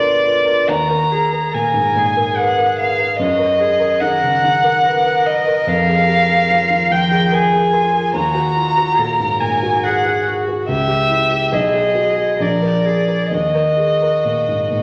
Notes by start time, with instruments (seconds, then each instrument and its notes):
Already playing: grand piano D2 B2 D3 G#4 B4, cello F4, violin D5
0.00 grand piano A#4
0.23 cello F4, grand piano B4
0.46 grand piano A#4
0.68 grand piano D#2, cello F#4, violin A#5
0.90 grand piano A#4
1.11 cello G#4, grand piano G#4
1.33 grand piano A#4
1.53 grand piano A#2, cello A#4, violin G#5
1.74 grand piano G#2
1.95 grand piano A#2, cello G#4
2.17 grand piano A#4
2.37 grand piano B4, violin F#5
2.58 grand piano A#4
2.79 grand piano B4, violin F5
2.99 grand piano A#4
3.19 grand piano F#2, cello F#4, violin D#5
3.39 grand piano A#4
3.60 grand piano G#4, cello G#4
3.80 grand piano A#4
4.00 grand piano D#3, cello A#4, violin F#5
4.23 grand piano C#3
4.44 grand piano D#3
4.63 grand piano A#4
4.83 cello A#4, grand piano B4
5.06 grand piano A#4
5.26 grand piano B4, violin D#5
5.47 grand piano A#4
5.67 grand piano F2, violin F5
5.88 grand piano G#4
6.08 grand piano G4
6.29 grand piano G#4
6.50 grand piano F3
6.70 grand piano D#3
6.91 grand piano F3, violin G5
7.11 grand piano G#4
7.31 cello G#4, grand piano A#4, violin G#5
7.52 grand piano G#4
7.73 cello F4, grand piano A#4
7.93 grand piano G#4
8.13 grand piano D#2, cello F#4, violin A#5
8.35 grand piano F#4
8.56 grand piano F4
8.77 grand piano F#4
8.98 grand piano A#2, cello A#4
9.20 grand piano G#2
9.40 grand piano A#2, violin G#5
9.63 grand piano F#4
9.84 cello G#4, grand piano G#4, violin F#5
10.04 grand piano F#4
10.27 cello F#4, grand piano G#4
10.48 grand piano F#4
10.68 grand piano C#2, cello G4, violin E5
10.88 grand piano G4
11.10 grand piano E4
11.31 grand piano G4
11.52 grand piano B1, cello G#4, violin D#5
11.73 grand piano G#4
11.95 grand piano F#4
12.17 grand piano G#4
12.39 grand piano A#1, cello A#4, violin D5
12.62 grand piano A#4
12.85 cello G#4, grand piano G#4
13.08 grand piano A#4
13.30 grand piano D#2, cello F#4, violin D#5
13.55 grand piano A#4
13.77 grand piano G#4
14.02 grand piano A#4
14.25 grand piano A#2
14.48 grand piano G#2
14.70 grand piano A#2